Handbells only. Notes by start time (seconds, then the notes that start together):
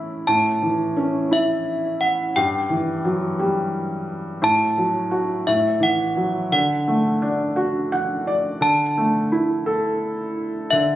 0.27 A5
1.33 E5
2.01 F#5
2.36 G5
4.44 A5
5.47 E5
5.83 F#5
6.52 F#5
8.62 A5
10.71 E5